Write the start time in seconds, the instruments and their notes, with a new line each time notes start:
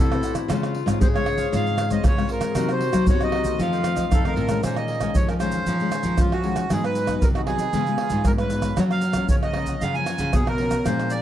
Already playing: nylon-string guitar A2 C3, clarinet E4
0.00 accordion A4
0.10 nylon-string guitar C4 F#4 B4, cavaquinho C5 D5 F#5, pandeiro, tamborim, shaker
0.21 cavaquinho D4 C5 D5 F#5, pandeiro, shaker
0.35 pandeiro, tamborim, shaker, surdo
0.48 nylon-string guitar C#3 G#3 C4 F4, cavaquinho F4 C5 C#5 F5, clarinet F4, pandeiro, tamborim, shaker, surdo
0.62 cavaquinho C5 C#5 F5, pandeiro, tamborim, shaker
0.74 muted cavaquinho stroke, pandeiro
0.86 nylon-string guitar G#2 G#3 C4 F4, cavaquinho C5 C#5 F5, pandeiro, tamborim, shaker, surdo
1.00 nylon-string guitar G#2 C#3, clarinet G#4, accordion C5, pandeiro, shaker, surdo
1.14 nylon-string guitar G#3 F4, cavaquinho C5 C#5 F5, accordion C#5, pandeiro, tamborim, shaker
1.26 cavaquinho F4 C5 C#5 F5, pandeiro, tamborim
1.38 cavaquinho C5 C#5 F5, pandeiro, shaker, surdo
1.52 nylon-string guitar G#2 C#3 G#3 C4 F4, cavaquinho F4 C5 C#5 F5, accordion F5, pandeiro, shaker, surdo
1.66 cavaquinho C5 F5, pandeiro, shaker
1.78 pandeiro, tamborim, shaker
1.89 nylon-string guitar G#3 C4 F4, cavaquinho C5 C#5 F5, accordion D#5, pandeiro, shaker, surdo
2.03 nylon-string guitar G#2 C#3, cavaquinho F4 C5 C#5 F5, pandeiro, tamborim, shaker, surdo
2.08 accordion C#5
2.16 nylon-string guitar G#3 C4 F4, cavaquinho C5 C#5 F5, pandeiro, tamborim, shaker
2.28 cavaquinho F4 C5 C#5 F5, pandeiro
2.32 accordion A#4
2.41 pandeiro, tamborim, shaker, surdo
2.49 clarinet G#4
2.55 nylon-string guitar C3 F#3 A#3 D#4, cavaquinho D#4 A#4 C5 F#5, clarinet F#4, pandeiro, tamborim, shaker, surdo
2.68 cavaquinho A#4 C5 F#5, accordion C5, pandeiro, tamborim, shaker
2.81 muted cavaquinho stroke, pandeiro
2.92 nylon-string guitar F#3 A#3 D#4, cavaquinho A#4 C5 F#5, pandeiro, tamborim, shaker, surdo
3.07 nylon-string guitar C3, accordion C#5, pandeiro, shaker, surdo
3.21 nylon-string guitar F#3 A#3 D#4, cavaquinho A#4 C5 F#5, accordion D#5, pandeiro, tamborim, shaker
3.32 cavaquinho D#4 A#4 C5 F#5, pandeiro, tamborim
3.44 nylon-string guitar D#3 A3 C4, cavaquinho A#4 C5 F#5, pandeiro, shaker, surdo
3.58 nylon-string guitar F2 F3, cavaquinho F4 A4 C5 D#5, clarinet F4, accordion F5, pandeiro, shaker, surdo
3.72 cavaquinho A4 C5 D#5, pandeiro, shaker
3.84 nylon-string guitar D#3 A3 C4, pandeiro, tamborim, shaker
3.96 cavaquinho A4 C5 D#5, pandeiro, shaker, surdo
4.11 nylon-string guitar F2 C3, clarinet D#4, cavaquinho F4 A4 C5 D#5, accordion A4, pandeiro, tamborim, shaker, surdo
4.24 nylon-string guitar D#3 A3 C4, cavaquinho A4 C5 D#5, accordion A#4, pandeiro, tamborim, shaker
4.36 nylon-string guitar A2, clarinet C4, cavaquinho F4 A4 C5 D#5, pandeiro
4.49 nylon-string guitar D#3 G#3 C#4, pandeiro, tamborim, shaker, surdo
4.63 nylon-string guitar A#2, cavaquinho A#4 C#5 F5 G#5, accordion C5, pandeiro, tamborim, shaker, surdo
4.76 accordion D#5, pandeiro, tamborim, shaker
4.88 cavaquinho A#4 C#5 F5 G#5, pandeiro
5.00 nylon-string guitar D#3 G#3 C#4, cavaquinho A#4 C#5 F5 G#5, pandeiro, tamborim, shaker, surdo
5.15 nylon-string guitar F2 F3, accordion C#5, pandeiro, shaker, surdo
5.28 accordion A#4, cavaquinho C#5 F5 G#5, pandeiro, tamborim, shaker
5.39 nylon-string guitar D#3 G#3 C#4, cavaquinho A#4 C#5 F5 G#5, accordion C5, pandeiro, tamborim, shaker
5.52 cavaquinho C#5 F5 G#5, pandeiro, shaker, surdo
5.66 nylon-string guitar A#2 F3, cavaquinho A#4 C#5 F5 G#5, pandeiro, shaker, surdo
5.80 nylon-string guitar D#3 G#3 C#4, pandeiro, shaker
5.91 cavaquinho A#4 C#5 F5 G#5, pandeiro, tamborim, shaker
6.03 nylon-string guitar F3, cavaquinho A#4 C#5 F5 G#5, pandeiro, shaker, surdo
6.18 nylon-string guitar F2 D#3 F3 G#3 C#4, accordion F4, pandeiro, tamborim, shaker, surdo
6.32 accordion F#4, cavaquinho C#5 F5 G#5, pandeiro, tamborim, shaker
6.43 nylon-string guitar D#3 G#3 C#4, cavaquinho A#4 C#5 F5 G#5, pandeiro
6.55 cavaquinho C#5 F5 G#5, pandeiro, tamborim, shaker, surdo
6.70 nylon-string guitar G#2 F#3 B3 D#4, cavaquinho F#4 G#4 B4 D#5, accordion G#4, pandeiro, tamborim, shaker, surdo
6.84 accordion B4, pandeiro, tamborim, shaker
6.95 cavaquinho F#4 G#4 B4 D#5, pandeiro, shaker
7.07 nylon-string guitar F#3 B3 D#4, cavaquinho F#4 G#4 B4 D#5, pandeiro, tamborim, shaker, surdo
7.22 nylon-string guitar C3 D#3, accordion A#4, pandeiro, shaker, surdo
7.35 accordion F#4, cavaquinho G#4 B4 D#5, pandeiro, tamborim, shaker
7.46 nylon-string guitar F#3 B3 D#4, cavaquinho F#4 G#4 B4 D#5, accordion G#4, pandeiro, tamborim, surdo
7.59 cavaquinho G#4 B4 D#5, pandeiro, shaker, surdo
7.73 nylon-string guitar C#3 G#3 B3 F4, cavaquinho F4 B4 C#5 F5, pandeiro, shaker, surdo
7.87 nylon-string guitar G#3 B3 F4, pandeiro, shaker
7.98 cavaquinho F4 B4 C#5 F5, pandeiro, tamborim
8.10 nylon-string guitar G#2, cavaquinho F4 B4 C#5 F5, pandeiro, shaker, surdo
8.25 nylon-string guitar G#2 G#3 B3 F4, accordion A#4, pandeiro, tamborim, shaker, surdo
8.38 accordion B4, cavaquinho B4 C#5 F5, pandeiro, tamborim, shaker
8.50 nylon-string guitar G#3 B3 F4, cavaquinho F4 B4 C#5 F5, pandeiro, shaker
8.62 cavaquinho B4 C#5 F5, pandeiro, tamborim, shaker, surdo
8.77 nylon-string guitar F#2 F3 F#3 A#3 C#4, cavaquinho F4 A#4 C#5 F#5, accordion C#5, pandeiro, tamborim, shaker, surdo
8.91 accordion F5, pandeiro, tamborim, shaker
9.01 cavaquinho F4 A#4 C#5, pandeiro, shaker
9.06 cavaquinho F#5
9.13 nylon-string guitar F3 A#3 C#4, cavaquinho F4 A#4 C#5 F#5, pandeiro, tamborim, shaker, surdo
9.29 nylon-string guitar C#3, accordion C#5, pandeiro, shaker, surdo
9.43 cavaquinho A#4 C#5 F#5, accordion D#5, pandeiro, tamborim, shaker
9.54 nylon-string guitar F3 A#3 C#4, cavaquinho F4 A#4 C#5 F#5, pandeiro, tamborim
9.66 cavaquinho A#4 C#5 F#5, pandeiro, shaker, surdo
9.81 nylon-string guitar F#2 C#3, cavaquinho F4 A#4 C#5 F#5, accordion F5, pandeiro, shaker, surdo
9.94 nylon-string guitar F3 A#3 C#4, accordion G#5, pandeiro, shaker
10.06 cavaquinho F4 A#4 C#5 F#5, pandeiro, tamborim, shaker
10.18 nylon-string guitar C#3, cavaquinho F4 A#4 C#5 F#5, pandeiro, shaker, surdo
10.33 nylon-string guitar B2 C#3 F3 A#3 C#4, accordion G#4, pandeiro, tamborim, shaker, surdo
10.47 accordion A#4, cavaquinho A#4 C#5 F#5, pandeiro, tamborim, shaker
10.58 nylon-string guitar F3 A#3 C#4, cavaquinho F4 A#4 C#5 F#5, pandeiro
10.71 cavaquinho A#4 C#5 F#5, pandeiro, tamborim, shaker, surdo
10.85 nylon-string guitar A#2 F3 G#3 D4, cavaquinho D4 A#4 F5 G#5, accordion C5, pandeiro, tamborim, shaker, surdo
10.99 pandeiro, tamborim, shaker
11.10 cavaquinho D4 A#4 F5 G#5, accordion D5, pandeiro, shaker